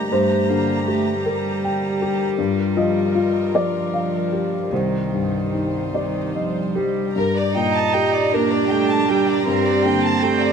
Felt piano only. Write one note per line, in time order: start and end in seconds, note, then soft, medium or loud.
0.00 0.13 D3 soft
0.00 0.34 G4 soft
0.00 0.13 A#4 soft
0.00 0.14 D5 medium
0.00 0.13 D#5 medium
0.00 0.13 G5 soft
0.12 2.34 G2 soft
0.12 1.21 C5 medium
0.50 1.10 D3 soft
0.88 1.47 G4 soft
1.26 1.85 A#4 soft
1.64 2.24 G5 soft
2.02 2.39 G4 soft
2.38 4.67 G2 medium
2.77 3.38 F3 soft
2.77 3.50 D#5 medium
3.15 3.77 F4 soft
3.54 4.16 A#4 soft
3.54 4.68 D5 medium
3.93 4.55 F5 soft
4.32 4.71 G4 soft
4.72 7.12 C2 soft
4.72 6.71 C5 soft
5.12 5.77 G2 soft
5.55 6.18 D#4 soft
5.94 6.59 D5 soft
6.35 7.00 D#5 soft
6.75 7.15 G4 soft
7.16 9.43 G2 soft
7.55 8.17 A#2 soft
7.94 8.55 G4 soft
8.33 8.94 A#4 soft
8.72 9.33 G5 soft
9.10 9.70 G4 soft
9.47 10.53 G2 medium
9.85 10.45 D3 soft
10.23 10.53 G4 soft